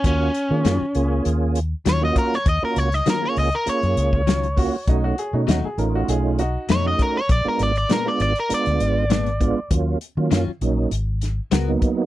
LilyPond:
<<
  \new Staff \with { instrumentName = "Overdriven electric guitar" } { \time 4/4 \key ees \minor \tempo 4 = 99 des'2 r4 des''16 ees''16 bes'16 des''16 | ees''16 bes'16 des''16 ees''16 bes'16 des''16 ees''16 bes'16 des''2~ | des''4 r2 des''16 dis''16 bes'16 des''16 | d''16 bes'16 d''16 d''16 bes'16 d''16 d''16 bes'16 d''2 |
r1 | }
  \new Staff \with { instrumentName = "Upright piano" } { \time 4/4 \key ees \minor r1 | r2. r8 ges'16 r16 | dis'16 fis'16 aes'16 dis'16 fis'16 aes'16 bes'16 fis'16 aes'8 <dis' fis'>8 r4 | r1 |
r1 | }
  \new Staff \with { instrumentName = "Tonewheel organ" } { \time 4/4 \key ees \minor <bes des' f' ges'>8 r16 <bes des' f' aes'>8 r16 <bes des' f' aes'>4 r8. <bes des' f' ges'>8 r16 | r16 <bes des' f' ges'>8 r16 <bes des' f' ges'>16 <bes des' f' aes'>8 r16 <bes des' f' aes'>4 r8 <bes des' f' ges'>16 r16 | <a des' dis' fis'>8 r16 <a des' dis' fis'>8 r16 <a des' dis' f'>4 r8. <a des' dis' fis'>8 r16 | r16 <aes ces' d' f'>8 r16 <aes ces' d' f'>16 <aes ces' d' f'>8 r16 <aes ces' d' f'>4 r8 <aes ces' d' f'>16 r16 |
<ges bes des' f'>8 r16 <ges bes des' f'>8 r16 <ges bes des' ees'>8 r4 r16 <ges bes ces' ees'>8 r16 | }
  \new Staff \with { instrumentName = "Clean electric guitar" } { \time 4/4 \key ees \minor r4 <ees ges des' f'>8 r4. <ees ges des' f'>8 r8 | r4 <ees ges des' f'>8 r4. <ees ges des' f'>8 r8 | r4 <b, fis a dis'>8 r4. <b, fis a dis'>8 r8 | r4 <bes, aes ces' d'>8 r4. <bes, aes ces' d'>8 r8 |
r4 <ees ges des' f'>8 r4. <aes ces' ges' bes'>8 r8 | }
  \new Staff \with { instrumentName = "Fingered electric bass" } { \clef bass \time 4/4 \key ees \minor ees,8 r16 ees16 ges,16 r16 des,8 ees,4 ees,8 r8 | ees,16 r16 des,8 r8 des,16 r8 ges,16 des,4. | b,,8 r16 b,16 dis,16 r16 a,,8 b,,4 f,8 r8 | bes,,16 r16 aes,,8 r8 aes,,16 r8 d,16 aes,,4. |
ees,8 r16 ees16 ges,16 r16 bes,,8 aes,,4 des,8 r8 | }
  \new DrumStaff \with { instrumentName = "Drums" } \drummode { \time 4/4 <hh bd>8 hh8 <hh sn>8 hh8 hh8 hh8 <hh sn>8 <hh bd>16 sn16 | <hh bd>8 hh16 <hh sn>16 <hh sn>8 hho16 hh16 hh16 hh16 hh16 bd16 <hh sn>16 hh16 <hho bd>8 | <hh bd>8 hh8 <hh sn>8 hh8 hh8 hh8 <hh sn>8 <hh bd>8 | <hh bd>8 hh16 hh16 <hh sn>8 hh16 hh16 hh16 hh16 hh8 <hh sn>16 hh16 <hh bd>8 |
<hh bd>8 hh8 <hh sn>8 hh8 hh8 <hh sn>8 <hh sn>8 <hh bd>8 | }
>>